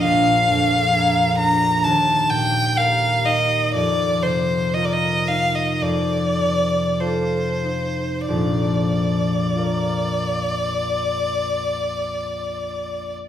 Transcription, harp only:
0, 0, Header, 1, 2, 480
1, 0, Start_track
1, 0, Key_signature, -2, "major"
1, 0, Tempo, 879765
1, 28, Time_signature, 4, 2, 24, 8
1, 508, Tempo, 923077
1, 1468, Tempo, 986842
1, 2428, Tempo, 1071429
1, 2908, Tempo, 1174168
1, 3388, Tempo, 1265823
1, 5773, End_track
2, 0, Start_track
2, 0, Title_t, "Harp"
2, 0, Program_c, 0, 46
2, 0, Note_on_c, 0, 62, 41
2, 0, Note_on_c, 0, 65, 42
2, 0, Note_on_c, 0, 70, 42
2, 25, Note_on_c, 0, 34, 50
2, 265, Note_on_c, 0, 41, 36
2, 496, Note_off_c, 0, 70, 0
2, 500, Note_on_c, 0, 68, 38
2, 503, Note_on_c, 0, 70, 43
2, 732, Note_off_c, 0, 62, 0
2, 738, Note_on_c, 0, 62, 37
2, 983, Note_on_c, 0, 39, 47
2, 997, Note_off_c, 0, 68, 0
2, 998, Note_off_c, 0, 62, 0
2, 999, Note_off_c, 0, 34, 0
2, 1000, Note_off_c, 0, 41, 0
2, 1002, Note_off_c, 0, 65, 0
2, 1221, Note_on_c, 0, 46, 34
2, 1465, Note_off_c, 0, 70, 0
2, 1467, Note_on_c, 0, 67, 34
2, 1471, Note_on_c, 0, 70, 39
2, 1700, Note_on_c, 0, 63, 39
2, 1937, Note_on_c, 0, 41, 46
2, 1958, Note_off_c, 0, 46, 0
2, 1958, Note_off_c, 0, 67, 0
2, 1960, Note_off_c, 0, 39, 0
2, 2183, Note_on_c, 0, 48, 31
2, 2428, Note_off_c, 0, 70, 0
2, 2432, Note_on_c, 0, 65, 33
2, 2435, Note_on_c, 0, 70, 37
2, 2664, Note_off_c, 0, 63, 0
2, 2669, Note_on_c, 0, 63, 33
2, 2898, Note_off_c, 0, 41, 0
2, 2903, Note_on_c, 0, 41, 39
2, 2928, Note_off_c, 0, 48, 0
2, 2929, Note_off_c, 0, 70, 0
2, 3145, Note_on_c, 0, 48, 26
2, 3388, Note_off_c, 0, 65, 0
2, 3390, Note_on_c, 0, 69, 31
2, 3393, Note_on_c, 0, 65, 32
2, 3628, Note_off_c, 0, 63, 0
2, 3633, Note_on_c, 0, 63, 31
2, 3876, Note_off_c, 0, 41, 0
2, 3877, Note_on_c, 0, 34, 40
2, 3880, Note_on_c, 0, 41, 39
2, 3895, Note_off_c, 0, 63, 0
2, 3896, Note_off_c, 0, 69, 0
2, 3897, Note_off_c, 0, 48, 0
2, 4355, Note_off_c, 0, 65, 0
2, 4360, Note_on_c, 0, 65, 33
2, 4366, Note_on_c, 0, 70, 33
2, 4375, Note_on_c, 0, 74, 30
2, 5731, Note_off_c, 0, 34, 0
2, 5735, Note_off_c, 0, 41, 0
2, 5773, Note_off_c, 0, 65, 0
2, 5773, Note_off_c, 0, 70, 0
2, 5773, Note_off_c, 0, 74, 0
2, 5773, End_track
0, 0, End_of_file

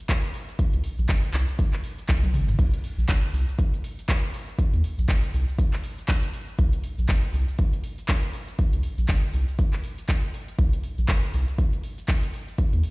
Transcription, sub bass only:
0, 0, Header, 1, 2, 480
1, 0, Start_track
1, 0, Key_signature, -3, "minor"
1, 0, Tempo, 500000
1, 564, Time_signature, 4, 2, 24, 8
1, 12391, End_track
2, 0, Start_track
2, 0, Title_t, "Sub bass"
2, 0, Program_c, 0, 38
2, 707, Note_on_c, 0, 36, 101
2, 790, Note_off_c, 0, 36, 0
2, 946, Note_on_c, 0, 34, 97
2, 1030, Note_off_c, 0, 34, 0
2, 1046, Note_on_c, 0, 31, 87
2, 1163, Note_off_c, 0, 31, 0
2, 1283, Note_on_c, 0, 36, 103
2, 1402, Note_off_c, 0, 36, 0
2, 2004, Note_on_c, 0, 36, 99
2, 2238, Note_on_c, 0, 31, 82
2, 2252, Note_off_c, 0, 36, 0
2, 2450, Note_off_c, 0, 31, 0
2, 2485, Note_on_c, 0, 36, 102
2, 2602, Note_off_c, 0, 36, 0
2, 2859, Note_on_c, 0, 34, 94
2, 2946, Note_off_c, 0, 34, 0
2, 2964, Note_on_c, 0, 31, 87
2, 3082, Note_off_c, 0, 31, 0
2, 3201, Note_on_c, 0, 36, 100
2, 3321, Note_off_c, 0, 36, 0
2, 4544, Note_on_c, 0, 39, 100
2, 4629, Note_off_c, 0, 39, 0
2, 4784, Note_on_c, 0, 34, 95
2, 4869, Note_off_c, 0, 34, 0
2, 4882, Note_on_c, 0, 31, 90
2, 5001, Note_off_c, 0, 31, 0
2, 5124, Note_on_c, 0, 36, 101
2, 5242, Note_off_c, 0, 36, 0
2, 6324, Note_on_c, 0, 36, 105
2, 6442, Note_off_c, 0, 36, 0
2, 6705, Note_on_c, 0, 34, 91
2, 6789, Note_off_c, 0, 34, 0
2, 6806, Note_on_c, 0, 31, 91
2, 6923, Note_off_c, 0, 31, 0
2, 7042, Note_on_c, 0, 36, 99
2, 7161, Note_off_c, 0, 36, 0
2, 8382, Note_on_c, 0, 36, 100
2, 8468, Note_off_c, 0, 36, 0
2, 8621, Note_on_c, 0, 34, 93
2, 8707, Note_off_c, 0, 34, 0
2, 8724, Note_on_c, 0, 31, 91
2, 8842, Note_off_c, 0, 31, 0
2, 8964, Note_on_c, 0, 36, 99
2, 9082, Note_off_c, 0, 36, 0
2, 10163, Note_on_c, 0, 36, 100
2, 10282, Note_off_c, 0, 36, 0
2, 10543, Note_on_c, 0, 34, 95
2, 10628, Note_off_c, 0, 34, 0
2, 10642, Note_on_c, 0, 31, 89
2, 10761, Note_off_c, 0, 31, 0
2, 10884, Note_on_c, 0, 36, 97
2, 11002, Note_off_c, 0, 36, 0
2, 12223, Note_on_c, 0, 39, 101
2, 12308, Note_off_c, 0, 39, 0
2, 12391, End_track
0, 0, End_of_file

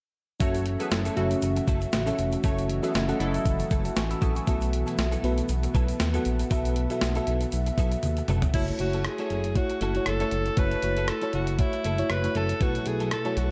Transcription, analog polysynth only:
0, 0, Header, 1, 2, 480
1, 0, Start_track
1, 0, Tempo, 508475
1, 381, Time_signature, 4, 2, 24, 8
1, 12755, End_track
2, 0, Start_track
2, 0, Title_t, "Analog polysynth"
2, 0, Program_c, 0, 90
2, 382, Note_on_c, 0, 66, 98
2, 382, Note_on_c, 0, 73, 106
2, 383, Note_on_c, 0, 57, 94
2, 573, Note_off_c, 0, 73, 0
2, 574, Note_off_c, 0, 57, 0
2, 574, Note_off_c, 0, 66, 0
2, 753, Note_on_c, 0, 71, 84
2, 754, Note_on_c, 0, 59, 78
2, 754, Note_on_c, 0, 68, 80
2, 840, Note_off_c, 0, 59, 0
2, 840, Note_off_c, 0, 68, 0
2, 840, Note_off_c, 0, 71, 0
2, 861, Note_on_c, 0, 54, 81
2, 863, Note_on_c, 0, 64, 77
2, 863, Note_on_c, 0, 69, 85
2, 967, Note_off_c, 0, 54, 0
2, 968, Note_off_c, 0, 64, 0
2, 968, Note_off_c, 0, 69, 0
2, 1100, Note_on_c, 0, 49, 97
2, 1100, Note_on_c, 0, 57, 98
2, 1100, Note_on_c, 0, 66, 102
2, 1552, Note_off_c, 0, 49, 0
2, 1552, Note_off_c, 0, 57, 0
2, 1552, Note_off_c, 0, 66, 0
2, 1819, Note_on_c, 0, 49, 99
2, 1819, Note_on_c, 0, 66, 111
2, 1820, Note_on_c, 0, 57, 101
2, 2012, Note_off_c, 0, 49, 0
2, 2012, Note_off_c, 0, 57, 0
2, 2012, Note_off_c, 0, 66, 0
2, 2300, Note_on_c, 0, 66, 96
2, 2301, Note_on_c, 0, 73, 106
2, 2302, Note_on_c, 0, 57, 101
2, 2493, Note_off_c, 0, 66, 0
2, 2493, Note_off_c, 0, 73, 0
2, 2494, Note_off_c, 0, 57, 0
2, 2672, Note_on_c, 0, 68, 72
2, 2673, Note_on_c, 0, 71, 79
2, 2674, Note_on_c, 0, 59, 73
2, 2759, Note_off_c, 0, 68, 0
2, 2760, Note_off_c, 0, 59, 0
2, 2760, Note_off_c, 0, 71, 0
2, 2781, Note_on_c, 0, 54, 79
2, 2781, Note_on_c, 0, 64, 80
2, 2781, Note_on_c, 0, 69, 85
2, 2887, Note_off_c, 0, 54, 0
2, 2887, Note_off_c, 0, 64, 0
2, 2887, Note_off_c, 0, 69, 0
2, 3019, Note_on_c, 0, 54, 94
2, 3020, Note_on_c, 0, 64, 98
2, 3021, Note_on_c, 0, 69, 107
2, 3471, Note_off_c, 0, 54, 0
2, 3472, Note_off_c, 0, 64, 0
2, 3472, Note_off_c, 0, 69, 0
2, 12755, End_track
0, 0, End_of_file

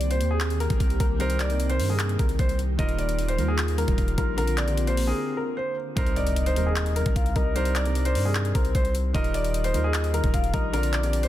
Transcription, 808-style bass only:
0, 0, Header, 1, 2, 480
1, 0, Start_track
1, 0, Key_signature, -3, "minor"
1, 0, Tempo, 397351
1, 1448, Time_signature, 4, 2, 24, 8
1, 13627, End_track
2, 0, Start_track
2, 0, Title_t, "808-style bass"
2, 0, Program_c, 0, 38
2, 0, Note_on_c, 0, 36, 103
2, 249, Note_on_c, 0, 39, 99
2, 267, Note_off_c, 0, 36, 0
2, 818, Note_off_c, 0, 39, 0
2, 848, Note_on_c, 0, 34, 100
2, 963, Note_off_c, 0, 34, 0
2, 968, Note_on_c, 0, 36, 107
2, 1199, Note_off_c, 0, 36, 0
2, 1209, Note_on_c, 0, 36, 105
2, 2169, Note_on_c, 0, 43, 105
2, 2187, Note_off_c, 0, 36, 0
2, 2624, Note_off_c, 0, 43, 0
2, 2649, Note_on_c, 0, 36, 107
2, 2879, Note_off_c, 0, 36, 0
2, 2889, Note_on_c, 0, 36, 105
2, 3349, Note_off_c, 0, 36, 0
2, 3368, Note_on_c, 0, 27, 102
2, 4088, Note_on_c, 0, 39, 97
2, 4106, Note_off_c, 0, 27, 0
2, 4658, Note_off_c, 0, 39, 0
2, 4687, Note_on_c, 0, 27, 102
2, 4803, Note_off_c, 0, 27, 0
2, 4808, Note_on_c, 0, 27, 106
2, 5038, Note_off_c, 0, 27, 0
2, 5048, Note_on_c, 0, 34, 104
2, 6200, Note_off_c, 0, 34, 0
2, 7208, Note_on_c, 0, 36, 107
2, 7928, Note_on_c, 0, 39, 101
2, 7947, Note_off_c, 0, 36, 0
2, 8498, Note_off_c, 0, 39, 0
2, 8528, Note_on_c, 0, 34, 105
2, 8643, Note_off_c, 0, 34, 0
2, 8648, Note_on_c, 0, 36, 108
2, 8879, Note_off_c, 0, 36, 0
2, 8889, Note_on_c, 0, 36, 104
2, 9848, Note_on_c, 0, 43, 105
2, 9866, Note_off_c, 0, 36, 0
2, 10304, Note_off_c, 0, 43, 0
2, 10329, Note_on_c, 0, 36, 108
2, 10559, Note_off_c, 0, 36, 0
2, 10568, Note_on_c, 0, 36, 106
2, 11029, Note_off_c, 0, 36, 0
2, 11048, Note_on_c, 0, 27, 106
2, 11768, Note_on_c, 0, 39, 101
2, 11786, Note_off_c, 0, 27, 0
2, 12338, Note_off_c, 0, 39, 0
2, 12368, Note_on_c, 0, 27, 106
2, 12483, Note_off_c, 0, 27, 0
2, 12488, Note_on_c, 0, 27, 106
2, 12718, Note_off_c, 0, 27, 0
2, 12728, Note_on_c, 0, 34, 106
2, 13627, Note_off_c, 0, 34, 0
2, 13627, End_track
0, 0, End_of_file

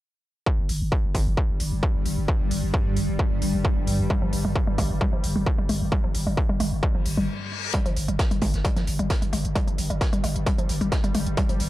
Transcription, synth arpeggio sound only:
0, 0, Header, 1, 2, 480
1, 0, Start_track
1, 0, Tempo, 454545
1, 491, Time_signature, 4, 2, 24, 8
1, 12349, End_track
2, 0, Start_track
2, 0, Title_t, "Synth arpeggio sound"
2, 0, Program_c, 0, 84
2, 4331, Note_on_c, 0, 55, 106
2, 4385, Note_off_c, 0, 55, 0
2, 4456, Note_on_c, 0, 53, 78
2, 4530, Note_off_c, 0, 53, 0
2, 4697, Note_on_c, 0, 55, 76
2, 4770, Note_off_c, 0, 55, 0
2, 4935, Note_on_c, 0, 55, 75
2, 4985, Note_off_c, 0, 55, 0
2, 5050, Note_on_c, 0, 56, 76
2, 5105, Note_off_c, 0, 56, 0
2, 5290, Note_on_c, 0, 55, 100
2, 5345, Note_off_c, 0, 55, 0
2, 5417, Note_on_c, 0, 53, 76
2, 5490, Note_off_c, 0, 53, 0
2, 5657, Note_on_c, 0, 55, 79
2, 5731, Note_off_c, 0, 55, 0
2, 5897, Note_on_c, 0, 55, 76
2, 5946, Note_off_c, 0, 55, 0
2, 6012, Note_on_c, 0, 56, 76
2, 6066, Note_off_c, 0, 56, 0
2, 6251, Note_on_c, 0, 55, 105
2, 6305, Note_off_c, 0, 55, 0
2, 6377, Note_on_c, 0, 53, 75
2, 6451, Note_off_c, 0, 53, 0
2, 6617, Note_on_c, 0, 55, 71
2, 6691, Note_off_c, 0, 55, 0
2, 6857, Note_on_c, 0, 55, 77
2, 6906, Note_off_c, 0, 55, 0
2, 6971, Note_on_c, 0, 56, 76
2, 7025, Note_off_c, 0, 56, 0
2, 7211, Note_on_c, 0, 55, 105
2, 7265, Note_off_c, 0, 55, 0
2, 7337, Note_on_c, 0, 53, 75
2, 7411, Note_off_c, 0, 53, 0
2, 7577, Note_on_c, 0, 55, 76
2, 7651, Note_off_c, 0, 55, 0
2, 8170, Note_on_c, 0, 55, 107
2, 8225, Note_off_c, 0, 55, 0
2, 8297, Note_on_c, 0, 53, 77
2, 8370, Note_off_c, 0, 53, 0
2, 8537, Note_on_c, 0, 55, 75
2, 8610, Note_off_c, 0, 55, 0
2, 8776, Note_on_c, 0, 55, 75
2, 8826, Note_off_c, 0, 55, 0
2, 8890, Note_on_c, 0, 56, 78
2, 8945, Note_off_c, 0, 56, 0
2, 9130, Note_on_c, 0, 55, 102
2, 9185, Note_off_c, 0, 55, 0
2, 9256, Note_on_c, 0, 53, 73
2, 9330, Note_off_c, 0, 53, 0
2, 9496, Note_on_c, 0, 55, 77
2, 9570, Note_off_c, 0, 55, 0
2, 9736, Note_on_c, 0, 55, 78
2, 9785, Note_off_c, 0, 55, 0
2, 9850, Note_on_c, 0, 56, 81
2, 9905, Note_off_c, 0, 56, 0
2, 10089, Note_on_c, 0, 55, 103
2, 10144, Note_off_c, 0, 55, 0
2, 10216, Note_on_c, 0, 53, 77
2, 10290, Note_off_c, 0, 53, 0
2, 10455, Note_on_c, 0, 55, 73
2, 10530, Note_off_c, 0, 55, 0
2, 10695, Note_on_c, 0, 55, 75
2, 10745, Note_off_c, 0, 55, 0
2, 10810, Note_on_c, 0, 56, 79
2, 10865, Note_off_c, 0, 56, 0
2, 11050, Note_on_c, 0, 55, 106
2, 11105, Note_off_c, 0, 55, 0
2, 11177, Note_on_c, 0, 53, 75
2, 11250, Note_off_c, 0, 53, 0
2, 11416, Note_on_c, 0, 55, 78
2, 11490, Note_off_c, 0, 55, 0
2, 11657, Note_on_c, 0, 55, 77
2, 11706, Note_off_c, 0, 55, 0
2, 11771, Note_on_c, 0, 56, 81
2, 11825, Note_off_c, 0, 56, 0
2, 12010, Note_on_c, 0, 55, 102
2, 12065, Note_off_c, 0, 55, 0
2, 12137, Note_on_c, 0, 53, 78
2, 12211, Note_off_c, 0, 53, 0
2, 12349, End_track
0, 0, End_of_file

